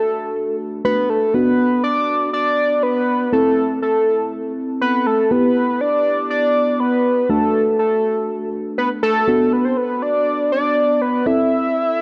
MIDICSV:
0, 0, Header, 1, 3, 480
1, 0, Start_track
1, 0, Tempo, 495868
1, 1300, Time_signature, 4, 2, 24, 8
1, 11632, End_track
2, 0, Start_track
2, 0, Title_t, "Analog synth lead"
2, 0, Program_c, 0, 81
2, 0, Note_on_c, 0, 69, 84
2, 542, Note_off_c, 0, 69, 0
2, 821, Note_on_c, 0, 71, 101
2, 1060, Note_on_c, 0, 69, 91
2, 1075, Note_off_c, 0, 71, 0
2, 1298, Note_on_c, 0, 71, 107
2, 1312, Note_off_c, 0, 69, 0
2, 1772, Note_off_c, 0, 71, 0
2, 1778, Note_on_c, 0, 74, 110
2, 2225, Note_off_c, 0, 74, 0
2, 2259, Note_on_c, 0, 74, 107
2, 2738, Note_on_c, 0, 71, 101
2, 2753, Note_off_c, 0, 74, 0
2, 3217, Note_off_c, 0, 71, 0
2, 3223, Note_on_c, 0, 69, 96
2, 3668, Note_off_c, 0, 69, 0
2, 3701, Note_on_c, 0, 69, 82
2, 4381, Note_off_c, 0, 69, 0
2, 4660, Note_on_c, 0, 71, 97
2, 4903, Note_on_c, 0, 69, 92
2, 4918, Note_off_c, 0, 71, 0
2, 5141, Note_on_c, 0, 71, 107
2, 5156, Note_off_c, 0, 69, 0
2, 5623, Note_on_c, 0, 74, 112
2, 5637, Note_off_c, 0, 71, 0
2, 6096, Note_off_c, 0, 74, 0
2, 6102, Note_on_c, 0, 74, 105
2, 6581, Note_on_c, 0, 71, 100
2, 6596, Note_off_c, 0, 74, 0
2, 7063, Note_on_c, 0, 69, 96
2, 7077, Note_off_c, 0, 71, 0
2, 7535, Note_off_c, 0, 69, 0
2, 7541, Note_on_c, 0, 69, 82
2, 8221, Note_off_c, 0, 69, 0
2, 8499, Note_on_c, 0, 71, 89
2, 8607, Note_off_c, 0, 71, 0
2, 8739, Note_on_c, 0, 69, 92
2, 9222, Note_on_c, 0, 71, 84
2, 9237, Note_off_c, 0, 69, 0
2, 9340, Note_on_c, 0, 72, 89
2, 9354, Note_off_c, 0, 71, 0
2, 9459, Note_on_c, 0, 71, 92
2, 9474, Note_off_c, 0, 72, 0
2, 9702, Note_on_c, 0, 74, 105
2, 9716, Note_off_c, 0, 71, 0
2, 10177, Note_off_c, 0, 74, 0
2, 10183, Note_on_c, 0, 74, 107
2, 10663, Note_on_c, 0, 71, 98
2, 10677, Note_off_c, 0, 74, 0
2, 10901, Note_on_c, 0, 76, 121
2, 10916, Note_off_c, 0, 71, 0
2, 11632, Note_off_c, 0, 76, 0
2, 11632, End_track
3, 0, Start_track
3, 0, Title_t, "FM electric piano"
3, 0, Program_c, 1, 5
3, 0, Note_on_c, 1, 57, 64
3, 0, Note_on_c, 1, 62, 61
3, 0, Note_on_c, 1, 66, 73
3, 791, Note_off_c, 1, 57, 0
3, 791, Note_off_c, 1, 62, 0
3, 791, Note_off_c, 1, 66, 0
3, 820, Note_on_c, 1, 57, 48
3, 820, Note_on_c, 1, 66, 53
3, 821, Note_on_c, 1, 62, 43
3, 1288, Note_off_c, 1, 66, 0
3, 1289, Note_off_c, 1, 62, 0
3, 1300, Note_off_c, 1, 57, 0
3, 1300, Note_on_c, 1, 59, 65
3, 1300, Note_on_c, 1, 62, 60
3, 1300, Note_on_c, 1, 66, 71
3, 3181, Note_off_c, 1, 59, 0
3, 3181, Note_off_c, 1, 66, 0
3, 3182, Note_off_c, 1, 62, 0
3, 3220, Note_on_c, 1, 60, 66
3, 3220, Note_on_c, 1, 64, 59
3, 3220, Note_on_c, 1, 69, 71
3, 5101, Note_off_c, 1, 60, 0
3, 5101, Note_off_c, 1, 64, 0
3, 5102, Note_off_c, 1, 69, 0
3, 5141, Note_on_c, 1, 59, 65
3, 5141, Note_on_c, 1, 64, 58
3, 5141, Note_on_c, 1, 67, 69
3, 7022, Note_off_c, 1, 59, 0
3, 7022, Note_off_c, 1, 64, 0
3, 7022, Note_off_c, 1, 67, 0
3, 7061, Note_on_c, 1, 57, 65
3, 7061, Note_on_c, 1, 62, 57
3, 7062, Note_on_c, 1, 66, 72
3, 8942, Note_off_c, 1, 57, 0
3, 8942, Note_off_c, 1, 62, 0
3, 8942, Note_off_c, 1, 66, 0
3, 8980, Note_on_c, 1, 59, 65
3, 8980, Note_on_c, 1, 62, 59
3, 8980, Note_on_c, 1, 66, 71
3, 10861, Note_off_c, 1, 62, 0
3, 10861, Note_off_c, 1, 66, 0
3, 10862, Note_off_c, 1, 59, 0
3, 10901, Note_on_c, 1, 64, 60
3, 10901, Note_on_c, 1, 69, 72
3, 10902, Note_on_c, 1, 60, 64
3, 11632, Note_off_c, 1, 60, 0
3, 11632, Note_off_c, 1, 64, 0
3, 11632, Note_off_c, 1, 69, 0
3, 11632, End_track
0, 0, End_of_file